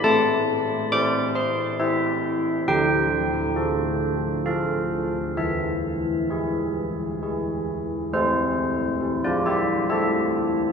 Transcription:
\new Staff \with { instrumentName = "Church bells" } { \time 3/4 \key a \minor \tempo 4 = 68 << { a''4 d'''8 c'''8 e''4 | g''2 f''4 | e''2 r4 | <e' c''>4~ <e' c''>16 <f' d''>16 <g' e''>8 <a' e''>4 | } \\ { a4 <e' c''>4 <e' c''>4 | d4 <f' a'>4 <f' a'>4 | e4 <e' gis'>4 <e' gis'>4 | a4 e'2 | } >> }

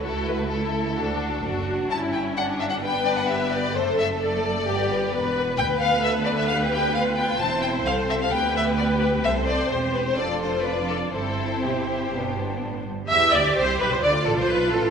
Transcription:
<<
  \new Staff \with { instrumentName = "Violin section" } { \time 4/4 \key g \lydian \tempo 4 = 130 a'8 b'8 a'2~ a'8 r8 | a''8 g''8 fis''8 e''16 fis''16 g''8 d''16 fis''16 e''8 d''8 | c''8 e''8 d''2~ d''8 r8 | \key c \major g''8 f''8 e''8 d''16 e''16 f''8 g''8 f''8 g''8 |
a''8 g''8 f''8 e''16 f''16 g''8 e''8 d''8 b'8 | e''8 d''8 c''8 b'16 c''16 d''8 c''8 b'8 a'8 | a'4 g'2 r4 | e''8 d''8 c''8 b'16 c''16 d''8 a'16 c''16 b'8 a'8 | }
  \new Staff \with { instrumentName = "Viola section" } { \time 4/4 \key g \lydian fis'4 e'4 d'4 fis'4 | e'4 d'4 b'2 | a'2 g'4 b'4 | \key c \major b'1 |
c''2 b'2 | c''2 a'4 d''4 | c''2.~ c''8 r8 | e''8 d''8 c''8 b'16 c''16 d''8 a'16 c''16 b'8 a'8 | }
  \new Staff \with { instrumentName = "Violin section" } { \time 4/4 \key g \lydian << { e'4 e'4 fis'4 fis'4 | e'4 d'4 d'4 g'4 | a'4 a'4 g'8 b'4.~ | \key c \major b'4 a'4 g'4 f'4 |
e'4 a'4 g'2 | a'4 g'4 f'2 | e'2 d'4. r8 | e''8 d''8 c''8 b'16 c''16 d''8 a'16 c''16 b'8 a'8 | } \\ { a2 a8 d'4. | cis'2 b2 | a4 a4 b4 b4 | b1 |
c'4 c'4 b2 | c'2 d'4 d'4 | c'2 b4. r8 | r1 | } >> }
  \new Staff \with { instrumentName = "Cello section" } { \clef bass \time 4/4 \key g \lydian cis,2 d,4 fis,4 | g,1 | fis,2 g,4 e,4 | \key c \major d,1 |
e,4 c,4 d,2 | c,4 e,4 f,2 | g,4 b,8 c8 b,8 g,8 a,8 g,8 | g'2 f'2 | }
  \new Staff \with { instrumentName = "Double bass section" } { \clef bass \time 4/4 \key g \lydian cis,2 d,4 fis,,4 | g,,1 | fis,,2 g,,4 e,,4 | \key c \major d,1 |
e,,4 c,4 d,2 | c,4 e,,4 f,,2 | g,,2 g,,4. r8 | e,8 d,8 c,8 b,,16 c,16 d,8 a,,16 c,16 b,,8 a,,8 | }
>>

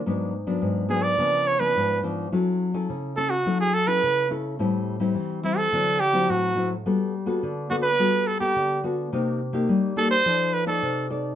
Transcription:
<<
  \new Staff \with { instrumentName = "Trumpet" } { \time 4/4 \key fis \phrygian \tempo 4 = 106 r4. gis'16 d''8. cis''16 b'8. r8 | r4. a'16 fis'8 gis'16 a'16 b'8. r8 | r4. e'16 a'8. g'8 fis'8. r16 | r4. fis'16 b'8. a'16 g'8. r8 |
r4. a'16 c''8. b'16 a'8. r8 | }
  \new Staff \with { instrumentName = "Nylon-string guitar" } { \time 4/4 \key fis \phrygian << { <fis b d'>8 r16 <fis b d'>8. <fis b d'>8 <eis b d'>8. <eis b d'>8. <eis b d'>8 | <cis' e' a'>8. <cis' e' a'>8. <cis' e' a'>16 r16 <cis' e' a'>8 r16 <cis' e' a'>8. <cis' e' a'>8 | <g c' e'>8. <g c' e'>8. <g c' e'>8 <fis c' e'>8 r16 <fis c' e'>8. <fis c' e'>16 r16 | <b fis' a'>8 r16 <b fis' a'>8. <b fis' a'>16 r16 <b fis' a'>8. <b a'>8. <b fis' a'>8 |
<bes ees' g'>8 r16 <bes ees' g'>8. <bes ees' g'>16 r16 <ees' a' d''>8. <ees' a' d''>8. <ees' a' d''>8 | } \\ { gis,4 gis,4 cis4 gis,4 | fis4 cis4 fis4 cis4 | a,4 e4 d4 a,4 | g4 d4 g4 d4 |
c4 g4 f4 c4 | } >> }
>>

